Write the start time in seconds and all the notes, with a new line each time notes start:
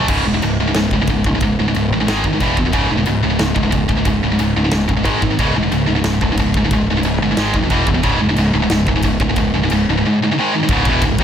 0.07 C#1 C#2 G#2 C#3, kick, crash, china
0.25 E1 C#2 G#2
0.34 C#2 G#2
0.42 C#1 C#2 G#2, china
0.58 C#1 C#2 G#2
0.68 C#2 G#2
0.74 C#1 C#2 G#2, snare, china
0.91 C#1 C#2 G#2, kick
1.01 C#2 G#2
1.07 C#1 C#2 G#2, kick, china
1.24 C#1 C#2 G#2, kick
1.35 C#2 G#2
1.40 C#1 C#2 G#2, kick, china
1.60 C#2 G#2
1.68 C#2 G#2
1.74 C#1 C#2 G#2, china
1.90 A1 C#2 G#2
2.00 C#2 G#2
2.07 G#1 G#2 D#3 G#3, snare, china
2.24 G#1 G#2 D#3, kick
2.33 G#2 D#3
2.40 E1 E2 B2 E3, kick, china
2.57 E1 E2 B2, kick
2.65 E2 B2
2.72 C#1 C#2 G#2 C#3, kick, china
2.89 E1 C#2 G#2
2.97 C#2 G#2
3.06 C#1 C#2 G#2, china
3.23 C#1 C#2 G#2
3.30 C#2 G#2
3.39 C#1 C#2 G#2, snare, china
3.55 C#1 C#2 G#2, kick
3.63 C#2 G#2
3.71 C#1 C#2 G#2, kick, china
3.89 C#1 C#2 G#2, kick
3.97 C#2 G#2
4.05 C#1 C#2 G#2, kick, china
4.24 C#2 G#2
4.32 C#2 G#2
4.39 C#1 C#2 G#2, china
4.55 C#1 C#2 G#2
4.64 C#2 G#2
4.71 C#1 C#2 G#2, snare, china
4.88 C#1 C#2 G#2, kick
4.97 C#2 G#2
5.04 G#1 G#2 D#3 G#3, kick, china
5.20 G#1 G#2 D#3, kick
5.31 G#2 D#3
5.39 C#1 C#2 G#2 C#3, kick, china
5.56 E1 C#2 G#2
5.63 C#2 G#2
5.72 C#1 C#2 G#2, china
5.87 C#1 C#2 G#2
5.96 C#2 G#2
6.04 C#1 C#2 G#2, snare, china
6.21 C#1 C#2 G#2, kick
6.32 C#2 G#2
6.37 C#1 C#2 G#2, kick, china
6.54 C#1 C#2 G#2, kick
6.64 C#2 G#2
6.71 C#1 C#2 G#2, kick, china
6.90 C#2 G#2
6.97 C#2 G#2
7.03 C#1 C#2 G#2, china
7.19 G1 G#2
7.24 C#2
7.31 C#2 G#2
7.37 G#1 G#2 D#3 G#3, snare, china
7.54 D#1 G#2 D#3, kick
7.64 G#2 D#3
7.70 E1 E2 B2 E3, kick, china
7.86 E1 E2 B2, kick
7.95 E2 B2
8.03 C#1 C#2 G#2 C#3, kick, china
8.20 E1 C#2 G#2
8.29 C#2 G#2
8.36 C#1 C#2 G#2, china
8.53 C#1 C#2 G#2
8.62 C#2 G#2
8.70 C#1 C#2 G#2, snare, china
8.87 C#1 C#2 G#2, kick
8.96 C#2 G#2
9.02 C#1 C#2 G#2, kick, china
9.20 C#1 C#2 G#2, kick
9.30 C#2 G#2
9.36 C#1 C#2 G#2, kick, china
9.54 C#2 G#2
9.63 C#2 G#2
9.70 C#1 C#2 G#2, china
9.88 C#1 C#2 G#2
9.97 C#2 G#2
10.05 C#2 G#2
10.22 C#2 G#2
10.32 C#2 G#2
10.39 G#2 D#3 G#3
10.55 G#2 D#3
10.63 G#2 D#3
10.69 C#1 C#2 G#2, kick, china
10.73 C#3
10.85 E1 E2, kick
10.89 B2 E3
11.02 C#1 C#2 G#2, kick, china
11.19 G#1 G#2 D#3, kick